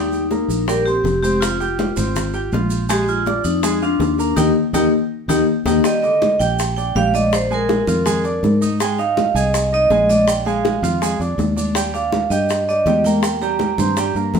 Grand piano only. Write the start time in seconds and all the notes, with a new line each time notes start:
Already playing: G3 G4 G5
0.31 A#3 A#4 A#5
0.68 G3 G4 G5
0.87 C4 C5 C6
1.23 C4 C5 C6
1.60 G4 G5 G6
1.96 C4 C5 C6
2.34 G4 G5 G6
2.53 F4 F5 F6
2.89 G#3 G#4 G#5
3.26 D4 D5 D6
3.64 G#3 G#4 G#5
3.82 F4 F5 F6
4.19 A#3 A#4 A#5
4.37 A#4 D#5 G5
4.74 A#4 D#5 G5
5.29 A#4 D#5 G5
5.66 A#4 D#5 G5
5.85 G3 G4 G5
6.03 D3 D#5 D6
6.40 G4 G5 G6
6.77 D4 D5 D6
6.96 G3 G4 G5
7.14 D4 D5 D6
7.51 G#3 G#4 G#5
7.87 F4 F5 F6
8.06 G#3 G#4 G#5
8.24 D4 D5 D6
8.61 D#4 D#5 D#6
8.81 G#3 G#4 G#5
8.99 D#4 D#5 D#6
9.35 G#4 G#5 G#6
9.73 D#4 D#5 D#6
9.91 G#3 G#4 G#5
10.10 D4 D5 D6
10.46 G#3 G#4 G#5
10.83 F4 F5 F6
11.02 G#3 G#4 G#5
11.20 D4 D5 D6
11.56 D4 D5 D6
11.75 G3 G4 G5
11.94 D4 D5 D6
12.31 G4 G5 G6
12.68 D4 D5 D6
12.87 G3 G4 G5
13.06 A#3 A#4 A#5
13.42 G3 G4 G5
13.79 C4 C5 C6
13.97 G3 G4 G5
14.16 A#3 A#4 A#5